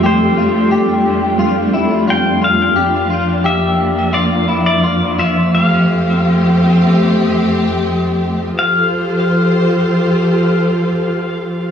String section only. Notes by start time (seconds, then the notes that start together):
Already playing: F2 G3 A3 G4
0.03 D4
2.76 F2 F3 A#3
5.54 A3 C4 G4
8.56 F3 F4 G4 A4 C5